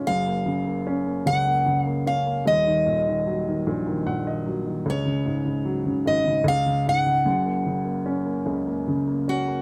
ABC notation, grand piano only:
X:1
M:3/4
L:1/16
Q:1/4=75
K:F#
V:1 name="Grand piano"
z12 | z8 f d3 | z12 | z12 |]
V:2 name="Grand piano" clef=bass
[F,,,F,,] A, C, A, C A, [C,,C,] A, C, A, C A, | [D,,,D,,] D, A,, D, F, D, [A,,,A,,] D, A,, D, F, D, | C,, C, G,, C, F, C, [G,,,G,,] C, C,, C, G,, C, | [F,,,F,,] A, C, A, C A, [C,,C,] A, C, A, C A, |]